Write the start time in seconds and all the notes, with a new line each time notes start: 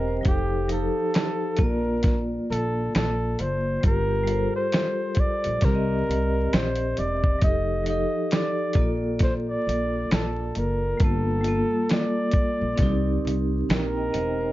Already playing: E1 C4 G4 A#4 C5 D#5 G5 A#5
0.07 C5
0.21 F3 D#4, closed hi-hat
0.25 F1 G4 A4, kick
0.68 F3 D#4, closed hi-hat
0.72 G4 A4
1.14 finger snap, snare, closed hi-hat
1.56 A#1 A#3 F4, kick, closed hi-hat
1.62 A#4 D5
2.03 kick, snare, closed hi-hat
2.50 A#1 A4, closed hi-hat
2.95 A#1 A4, finger snap, snare, closed hi-hat
3.39 F#1 C5, closed hi-hat
3.81 G1 G3 F4, kick, closed hi-hat
3.85 G4 A#4
4.23 G3 F4
4.27 A4 C5, closed hi-hat
4.56 C5
4.72 finger snap, snare, closed hi-hat
5.15 kick, closed hi-hat
5.20 D5
5.44 A#1, closed hi-hat
5.61 C2 C4 G4 A#4, kick, snare, closed hi-hat
5.66 A#4 D5
5.75 D#5
6.09 C2, closed hi-hat
6.53 A#1 C5, finger snap, snare, closed hi-hat
6.75 closed hi-hat
6.97 E1 D5, closed hi-hat
7.24 kick
7.39 F3 D#4, kick, closed hi-hat
7.43 F1 G4 A4 D#5
7.84 F3 D#4, closed hi-hat
7.88 G4 A4 D#5
8.31 D5, finger snap, snare, closed hi-hat
8.73 A#1 A#3 F4, kick, closed hi-hat
8.79 A4 D5
9.19 C5, kick, snare, closed hi-hat
9.49 D5
9.67 A#1, closed hi-hat
10.11 A#1 A4, finger snap, snare, closed hi-hat
10.55 F#1 A#4, closed hi-hat
10.97 G1 G3 F4, kick, closed hi-hat
11.02 A#3 A4
11.41 G3 F4, closed hi-hat
11.46 A#3 A4
11.89 D5, finger snap, snare, closed hi-hat
12.31 kick, closed hi-hat
12.61 A#1
12.76 C2 C4 G4, kick, closed hi-hat
12.80 D#4 A#4, snare
13.25 C2, closed hi-hat
13.69 A#1 A#4 G5 A#5, finger snap, snare, closed hi-hat
13.97 D#5 G5
14.12 E1 C5 D#5, closed hi-hat
14.41 C5